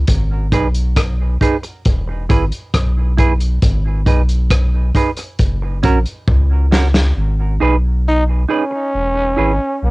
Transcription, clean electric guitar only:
0.52 0.66 D#4 medium
0.52 0.67 G#4 medium
0.52 0.67 B4 medium
1.41 1.55 D#4 medium
1.41 1.56 G#4 medium
1.41 1.56 B4 medium
1.63 muted clean electric guitar stroke soft
2.08 muted clean electric guitar stroke soft
2.29 2.43 E4 medium
2.29 2.44 G#4 medium
2.29 2.44 B4 medium
3.18 3.32 E4 medium
3.18 3.33 G#4 medium
3.18 3.33 B4 medium
4.06 4.20 D#4 medium
4.06 4.21 G#4 medium
4.06 4.21 B4 medium
4.95 5.09 D#4 medium
4.95 5.10 G#4 medium
4.95 5.10 B4 medium
5.17 muted clean electric guitar stroke soft
5.62 muted clean electric guitar stroke soft
5.83 5.97 C#4 medium
5.83 5.98 F#4 medium
5.83 5.98 A#4 medium
6.71 6.86 C#4 medium
6.71 6.86 F#4 medium
6.71 6.87 A#4 medium
7.60 7.75 D#4 medium
7.60 7.75 G#4 medium
7.60 7.75 B4 loud
8.49 8.63 D#4 medium
8.49 8.63 G#4 medium
8.49 8.64 B4 medium
8.71 muted clean electric guitar stroke soft
9.15 muted clean electric guitar stroke soft
9.37 9.51 E4 medium
9.37 9.52 G#4 medium
9.37 9.52 B4 medium

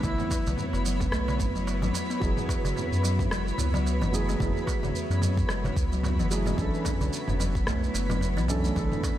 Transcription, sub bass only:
0.03 0.15 B1 loud
0.47 0.55 B1 loud
0.73 1.08 F#1 loud
1.12 1.41 B1 medium
1.40 1.84 F#1 medium
1.82 1.92 A1 loud
2.22 2.34 F#1 medium
2.64 2.74 F#1 loud
2.92 3.26 F#2 loud
3.31 3.53 F#1 medium
3.58 4.03 C#2 medium
4.01 4.36 F#1 loud
4.40 4.52 F#1 medium
4.83 4.92 F#1 medium
5.10 5.45 F#2 loud
5.49 5.71 F#1 medium
5.77 6.21 C#2 medium
6.19 6.54 F#1 medium
6.58 6.70 B1 medium
7.01 7.10 B1 medium
7.28 7.63 F#1 loud
7.67 7.89 B1 medium
7.94 8.38 F#1 medium
8.37 8.72 B1 medium
8.76 8.88 B1 loud

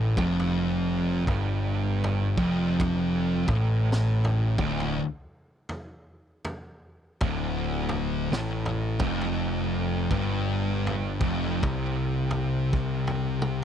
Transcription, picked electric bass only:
0.00 0.13 A1 medium
0.17 1.23 F1 medium
1.28 2.34 G1 medium
2.38 3.44 F1 medium
3.49 4.55 A1 medium
4.58 4.98 D1 loud
7.21 8.28 D1 medium
8.32 8.96 A1 medium
9.00 10.06 F1 medium
10.11 11.17 G1 medium
11.21 11.60 F1 medium
11.63 12.69 C2 medium
12.73 13.64 C2 medium

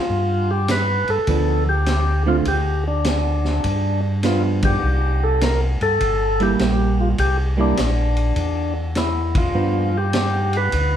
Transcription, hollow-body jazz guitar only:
1.28 1.64 F3 medium
1.28 1.64 B3 medium
1.28 1.64 D4 medium
2.26 2.44 D3 medium
2.26 2.44 A3 medium
2.26 2.44 C4 medium
2.26 2.45 F4 medium
4.23 4.82 F3 medium
4.23 4.83 B3 medium
4.23 4.83 D4 medium
6.40 7.15 G3 medium
6.40 7.15 A#3 medium
6.40 7.15 E4 medium
7.57 7.75 G3 medium
7.57 7.76 A#3 medium
7.57 7.76 E4 medium
9.54 9.90 F3 medium
9.54 9.90 B3 medium
9.54 9.91 D4 medium

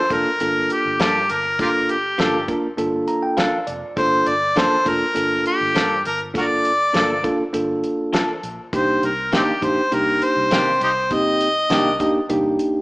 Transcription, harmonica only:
0.00 0.14 C5 medium
0.13 0.74 A#4 medium
0.72 1.01 G4 medium
1.03 1.32 G4 medium
1.31 1.60 A#4 medium
1.61 1.69 F4 medium
1.61 1.69 G4 medium
1.61 1.92 A#4 medium
1.91 2.49 G4 medium
3.98 4.30 C5 medium
4.28 4.60 D5 medium
4.59 4.90 C5 medium
4.88 5.47 A#4 medium
5.47 6.02 G4 medium
6.07 6.20 A#4 medium
6.37 6.45 F#4 medium
6.37 6.45 A#4 medium
6.37 7.51 D5 medium
8.75 9.06 C5 medium
9.05 9.34 A#4 medium
9.35 9.42 C4 medium
9.35 9.43 D#4 medium
9.35 9.66 G4 medium
9.65 9.95 C5 medium
9.94 10.25 A#4 medium
10.24 10.82 C5 medium
10.84 10.92 D#4 medium
10.84 10.90 G4 medium
10.84 11.15 C5 medium
11.13 12.31 D#5 loud

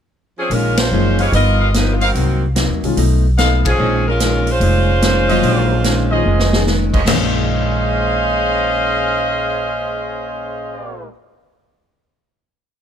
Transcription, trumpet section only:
1.19 1.57 G4 medium
1.19 1.57 B4 medium
1.19 1.57 D#5 medium
1.19 1.57 F5 medium
1.60 1.69 G4 medium
1.60 1.69 B4 medium
1.60 1.70 D#5 medium
1.60 1.69 F5 medium
2.01 2.10 A#4 medium
2.01 2.11 C5 medium
2.01 2.10 D#5 medium
2.01 2.11 F5 medium
3.38 3.79 A4 medium
3.38 3.79 B4 medium
3.38 3.77 D#5 medium
3.38 3.79 F5 medium
3.78 3.97 G#4 medium
3.78 3.97 C5 medium
3.78 3.97 C#5 medium
3.78 3.97 D#5 medium
5.28 5.81 C#4 medium
5.28 5.81 G#4 medium
5.28 5.81 C5 medium
5.28 5.81 D#5 medium
6.11 6.63 C#4 medium
6.11 6.63 G#4 medium
6.11 6.63 C5 medium
6.11 6.63 D#5 medium
6.93 7.03 A#3 medium
6.93 7.03 G#4 medium
6.93 7.03 C5 medium
6.93 7.03 C#5 medium
6.93 7.03 D#5 medium
7.07 11.09 C#4 medium
7.07 11.09 G#4 medium
7.07 11.09 C5 medium
7.07 11.09 D#5 medium

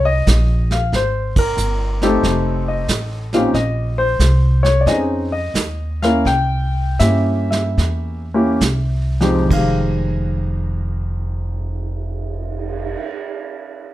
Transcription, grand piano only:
0.05 0.72 D#5 medium
0.72 0.91 F5 medium
0.96 1.34 C5 medium
1.39 2.04 A#4 medium
2.03 2.84 A3 medium
2.03 2.85 C4 medium
2.03 2.84 D#4 medium
2.03 2.85 G4 medium
2.03 3.29 A4 medium
2.68 3.28 D#5 medium
3.34 3.52 A#2 medium
3.34 3.52 C4 medium
3.34 3.52 C#4 soft
3.34 3.52 D#4 medium
3.34 3.53 G4 medium
3.34 3.39 F5 medium
3.54 3.99 D#5 medium
3.98 4.66 C5 medium
4.63 4.81 C#5 medium
4.81 4.86 D5 medium
4.87 5.27 C4 soft
4.87 5.27 C#4 soft
4.87 5.28 D#4 medium
4.87 5.27 G#4 medium
4.87 4.97 D#5 medium
5.32 6.04 D#5 medium
6.02 6.24 A#3 soft
6.02 6.24 C#4 soft
6.02 6.24 E4 medium
6.02 6.24 A#4 medium
6.02 6.26 F5 medium
6.27 6.96 G5 medium
6.99 8.22 A#3 soft
6.99 8.22 C#4 soft
6.99 8.22 E4 soft
6.99 8.22 G4 soft
6.99 7.49 E5 medium
7.51 9.16 E5 medium
8.34 8.59 A#3 medium
8.34 8.59 C#4 medium
8.34 8.59 E4 medium
8.34 8.59 G4 medium
9.21 9.44 F2 medium
9.21 9.48 G#3 soft
9.21 9.48 C4 medium
9.21 9.48 D#4 medium
9.21 9.49 G4 medium
9.46 12.93 F2 soft
9.50 12.97 D#3 soft
9.50 12.96 F5 medium
9.54 13.02 G#3 soft
9.54 13.05 G4 medium

